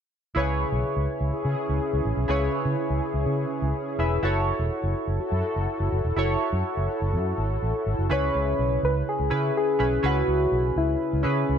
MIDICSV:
0, 0, Header, 1, 6, 480
1, 0, Start_track
1, 0, Key_signature, 4, "minor"
1, 0, Tempo, 483871
1, 359, Time_signature, 4, 2, 24, 8
1, 11492, End_track
2, 0, Start_track
2, 0, Title_t, "Soft synth lead"
2, 0, Program_c, 0, 80
2, 8061, Note_on_c, 0, 73, 104
2, 8730, Note_off_c, 0, 73, 0
2, 8776, Note_on_c, 0, 71, 93
2, 8880, Note_off_c, 0, 71, 0
2, 9016, Note_on_c, 0, 68, 93
2, 9455, Note_off_c, 0, 68, 0
2, 9497, Note_on_c, 0, 68, 95
2, 9977, Note_on_c, 0, 66, 92
2, 9992, Note_off_c, 0, 68, 0
2, 10684, Note_off_c, 0, 66, 0
2, 10690, Note_on_c, 0, 64, 86
2, 11492, Note_off_c, 0, 64, 0
2, 11492, End_track
3, 0, Start_track
3, 0, Title_t, "Synth keys"
3, 0, Program_c, 1, 88
3, 344, Note_on_c, 1, 64, 66
3, 355, Note_on_c, 1, 68, 61
3, 358, Note_on_c, 1, 49, 64
3, 361, Note_on_c, 1, 71, 57
3, 371, Note_on_c, 1, 73, 70
3, 564, Control_c, 1, 64, 127
3, 1039, Note_off_c, 1, 49, 0
3, 2233, Note_off_c, 1, 64, 0
3, 2238, Note_off_c, 1, 68, 0
3, 2242, Note_off_c, 1, 71, 0
3, 2247, Note_off_c, 1, 73, 0
3, 2261, Note_on_c, 1, 64, 65
3, 2269, Note_on_c, 1, 68, 63
3, 2272, Note_on_c, 1, 49, 67
3, 2278, Note_on_c, 1, 71, 63
3, 2287, Note_on_c, 1, 73, 72
3, 2956, Note_off_c, 1, 49, 0
3, 3916, Note_off_c, 1, 64, 0
3, 3920, Note_off_c, 1, 68, 0
3, 3925, Note_off_c, 1, 71, 0
3, 3929, Note_off_c, 1, 73, 0
3, 3956, Note_on_c, 1, 64, 53
3, 3958, Note_on_c, 1, 68, 45
3, 3963, Note_on_c, 1, 71, 48
3, 3965, Note_on_c, 1, 76, 56
3, 4181, Note_off_c, 1, 64, 0
3, 4193, Note_on_c, 1, 64, 69
3, 4198, Note_off_c, 1, 68, 0
3, 4198, Note_on_c, 1, 66, 62
3, 4201, Note_off_c, 1, 71, 0
3, 4202, Note_off_c, 1, 76, 0
3, 4209, Note_on_c, 1, 69, 64
3, 4214, Control_c, 1, 64, 0
3, 4214, Note_on_c, 1, 73, 73
3, 4398, Control_c, 1, 64, 127
3, 6077, Note_off_c, 1, 64, 0
3, 6080, Note_off_c, 1, 66, 0
3, 6086, Note_off_c, 1, 69, 0
3, 6088, Note_off_c, 1, 73, 0
3, 6115, Note_on_c, 1, 64, 69
3, 6123, Note_on_c, 1, 66, 63
3, 6131, Note_on_c, 1, 69, 61
3, 6137, Note_on_c, 1, 73, 76
3, 7998, Note_off_c, 1, 64, 0
3, 8002, Note_off_c, 1, 66, 0
3, 8006, Note_off_c, 1, 69, 0
3, 8010, Note_off_c, 1, 73, 0
3, 8030, Note_on_c, 1, 61, 65
3, 8034, Note_on_c, 1, 64, 61
3, 8038, Note_on_c, 1, 49, 61
3, 8040, Note_on_c, 1, 68, 60
3, 8044, Note_on_c, 1, 71, 77
3, 8052, Control_c, 1, 64, 0
3, 8212, Control_c, 1, 64, 127
3, 8719, Note_off_c, 1, 49, 0
3, 8820, Note_off_c, 1, 61, 0
3, 8822, Note_off_c, 1, 64, 0
3, 8826, Note_off_c, 1, 68, 0
3, 8827, Note_off_c, 1, 71, 0
3, 9227, Note_on_c, 1, 61, 59
3, 9228, Note_on_c, 1, 64, 56
3, 9232, Note_on_c, 1, 68, 58
3, 9234, Note_on_c, 1, 71, 68
3, 9626, Note_off_c, 1, 61, 0
3, 9627, Note_off_c, 1, 64, 0
3, 9629, Note_off_c, 1, 68, 0
3, 9629, Note_off_c, 1, 71, 0
3, 9709, Note_on_c, 1, 61, 59
3, 9711, Note_on_c, 1, 64, 57
3, 9715, Note_on_c, 1, 68, 55
3, 9719, Note_on_c, 1, 71, 65
3, 9910, Note_off_c, 1, 61, 0
3, 9912, Note_off_c, 1, 64, 0
3, 9913, Note_off_c, 1, 68, 0
3, 9916, Note_off_c, 1, 71, 0
3, 9946, Note_on_c, 1, 61, 69
3, 9948, Note_on_c, 1, 64, 62
3, 9950, Note_on_c, 1, 49, 62
3, 9954, Note_on_c, 1, 68, 63
3, 9958, Note_on_c, 1, 71, 77
3, 10635, Note_off_c, 1, 49, 0
3, 10739, Note_off_c, 1, 61, 0
3, 10740, Note_off_c, 1, 64, 0
3, 10742, Note_off_c, 1, 68, 0
3, 10745, Note_off_c, 1, 71, 0
3, 11138, Note_on_c, 1, 61, 62
3, 11141, Note_on_c, 1, 64, 58
3, 11149, Note_on_c, 1, 68, 60
3, 11153, Note_on_c, 1, 71, 66
3, 11492, Note_off_c, 1, 61, 0
3, 11492, Note_off_c, 1, 64, 0
3, 11492, Note_off_c, 1, 68, 0
3, 11492, Note_off_c, 1, 71, 0
3, 11492, End_track
4, 0, Start_track
4, 0, Title_t, "Analog polysynth"
4, 0, Program_c, 2, 90
4, 1318, Note_on_c, 2, 61, 66
4, 1318, Note_on_c, 2, 64, 65
4, 1318, Note_on_c, 2, 68, 80
4, 4158, Note_off_c, 2, 64, 0
4, 4159, Note_off_c, 2, 61, 0
4, 4159, Note_off_c, 2, 68, 0
4, 5157, Note_on_c, 2, 66, 66
4, 5158, Note_on_c, 2, 64, 68
4, 5158, Note_on_c, 2, 69, 81
4, 7998, Note_off_c, 2, 64, 0
4, 7998, Note_off_c, 2, 66, 0
4, 7999, Note_off_c, 2, 69, 0
4, 11492, End_track
5, 0, Start_track
5, 0, Title_t, "Fingered electric bass"
5, 0, Program_c, 3, 33
5, 355, Note_on_c, 3, 37, 88
5, 627, Note_off_c, 3, 37, 0
5, 717, Note_on_c, 3, 35, 74
5, 808, Note_off_c, 3, 35, 0
5, 957, Note_on_c, 3, 37, 72
5, 1048, Note_off_c, 3, 37, 0
5, 1197, Note_on_c, 3, 37, 71
5, 1288, Note_off_c, 3, 37, 0
5, 1437, Note_on_c, 3, 49, 74
5, 1528, Note_off_c, 3, 49, 0
5, 1679, Note_on_c, 3, 37, 71
5, 1769, Note_off_c, 3, 37, 0
5, 1919, Note_on_c, 3, 37, 70
5, 2009, Note_off_c, 3, 37, 0
5, 2035, Note_on_c, 3, 33, 79
5, 2126, Note_off_c, 3, 33, 0
5, 2154, Note_on_c, 3, 35, 74
5, 2246, Note_off_c, 3, 35, 0
5, 2272, Note_on_c, 3, 37, 85
5, 2455, Note_off_c, 3, 37, 0
5, 2633, Note_on_c, 3, 49, 86
5, 2725, Note_off_c, 3, 49, 0
5, 2879, Note_on_c, 3, 37, 75
5, 2969, Note_off_c, 3, 37, 0
5, 3115, Note_on_c, 3, 37, 68
5, 3207, Note_off_c, 3, 37, 0
5, 3233, Note_on_c, 3, 49, 84
5, 3415, Note_off_c, 3, 49, 0
5, 3593, Note_on_c, 3, 37, 76
5, 3685, Note_off_c, 3, 37, 0
5, 3954, Note_on_c, 3, 28, 78
5, 4136, Note_off_c, 3, 28, 0
5, 4193, Note_on_c, 3, 30, 85
5, 4465, Note_off_c, 3, 30, 0
5, 4557, Note_on_c, 3, 28, 72
5, 4648, Note_off_c, 3, 28, 0
5, 4797, Note_on_c, 3, 30, 79
5, 4887, Note_off_c, 3, 30, 0
5, 5034, Note_on_c, 3, 30, 71
5, 5126, Note_off_c, 3, 30, 0
5, 5276, Note_on_c, 3, 42, 82
5, 5367, Note_off_c, 3, 42, 0
5, 5517, Note_on_c, 3, 30, 77
5, 5608, Note_off_c, 3, 30, 0
5, 5754, Note_on_c, 3, 30, 75
5, 5846, Note_off_c, 3, 30, 0
5, 5875, Note_on_c, 3, 30, 78
5, 5966, Note_off_c, 3, 30, 0
5, 5997, Note_on_c, 3, 28, 74
5, 6088, Note_off_c, 3, 28, 0
5, 6114, Note_on_c, 3, 30, 95
5, 6296, Note_off_c, 3, 30, 0
5, 6474, Note_on_c, 3, 42, 84
5, 6566, Note_off_c, 3, 42, 0
5, 6717, Note_on_c, 3, 30, 75
5, 6808, Note_off_c, 3, 30, 0
5, 6961, Note_on_c, 3, 30, 80
5, 7079, Note_on_c, 3, 42, 92
5, 7094, Note_off_c, 3, 30, 0
5, 7259, Note_off_c, 3, 42, 0
5, 7319, Note_on_c, 3, 32, 86
5, 7499, Note_off_c, 3, 32, 0
5, 7564, Note_on_c, 3, 33, 83
5, 7652, Note_off_c, 3, 33, 0
5, 7802, Note_on_c, 3, 32, 80
5, 7891, Note_off_c, 3, 32, 0
5, 7923, Note_on_c, 3, 30, 71
5, 8011, Note_off_c, 3, 30, 0
5, 8042, Note_on_c, 3, 37, 88
5, 8221, Note_off_c, 3, 37, 0
5, 8284, Note_on_c, 3, 37, 82
5, 8462, Note_off_c, 3, 37, 0
5, 8521, Note_on_c, 3, 35, 74
5, 8700, Note_off_c, 3, 35, 0
5, 8761, Note_on_c, 3, 37, 85
5, 8940, Note_off_c, 3, 37, 0
5, 9123, Note_on_c, 3, 37, 72
5, 9211, Note_off_c, 3, 37, 0
5, 9240, Note_on_c, 3, 49, 86
5, 9420, Note_off_c, 3, 49, 0
5, 9721, Note_on_c, 3, 35, 74
5, 9900, Note_off_c, 3, 35, 0
5, 9955, Note_on_c, 3, 37, 89
5, 10136, Note_off_c, 3, 37, 0
5, 10195, Note_on_c, 3, 37, 76
5, 10376, Note_off_c, 3, 37, 0
5, 10433, Note_on_c, 3, 35, 76
5, 10615, Note_off_c, 3, 35, 0
5, 10676, Note_on_c, 3, 37, 76
5, 10857, Note_off_c, 3, 37, 0
5, 11043, Note_on_c, 3, 37, 78
5, 11131, Note_off_c, 3, 37, 0
5, 11161, Note_on_c, 3, 49, 90
5, 11340, Note_off_c, 3, 49, 0
5, 11401, Note_on_c, 3, 37, 78
5, 11492, Note_off_c, 3, 37, 0
5, 11492, End_track
6, 0, Start_track
6, 0, Title_t, "Muted fingered electric bass strokes"
6, 5156, Note_on_c, 9, 29, 40
6, 5255, Note_off_c, 9, 29, 0
6, 11492, End_track
0, 0, End_of_file